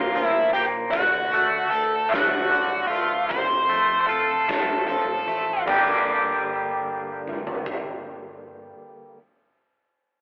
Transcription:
Already playing: A#1 A#2 A#3 F4
0.14 D2 F3, closed hi-hat
0.26 E4
0.53 A#1 A#3 G4, closed hi-hat
0.91 D2 D3 F#4, kick, closed hi-hat
1.32 D3 A3, closed hi-hat
1.70 D2 A4, closed hi-hat
2.09 D2 A3 F#4, closed hi-hat
2.14 snare
2.49 G2 D3, closed hi-hat
2.87 D2 A3 F4
2.92 closed hi-hat
3.29 F1 F2 C5, kick, closed hi-hat
3.69 F2 A3, closed hi-hat
4.01 C5
4.07 F1 F4 A4, closed hi-hat
4.48 F1 A3, kick, snare, closed hi-hat
4.88 A#1 F3 A4, closed hi-hat
5.28 A1 A3, closed hi-hat
5.66 G1 G2 D3 G3 A#3 D4, kick, crash
5.70 G4
7.27 mid tom
7.47 floor tom
7.66 kick

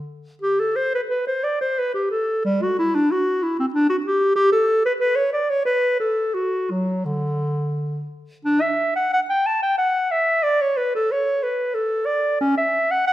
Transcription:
0.42 G4
0.59 A4
0.76 C5
0.95 B4
1.09 B4
1.27 C5
1.43 D5
1.61 C5
1.79 B4
1.94 G4
2.10 A4
2.45 G3
2.62 F#4
2.79 E4
2.95 D4
3.11 F#4
3.42 E4
3.59 C4
3.74 D4
3.90 F#4
4.06 G4
4.35 G4
4.52 A4
4.86 B4
5.00 B4
5.16 C#5
5.33 D5
5.50 C#5
5.65 B4
6.00 A4
6.34 F#4
6.70 F#3
7.05 D3
8.45 D4
8.61 E5
8.95 F#5
9.13 F#5
9.29 G5
9.46 A5
9.62 G5
9.78 F#5
10.11 E5
10.43 D5
10.61 C#5
10.77 B4
10.95 A4
11.11 C#5
11.43 B4
11.74 A4
12.06 D5
12.41 C#4
12.57 E5
12.91 F#5
13.07 F#5

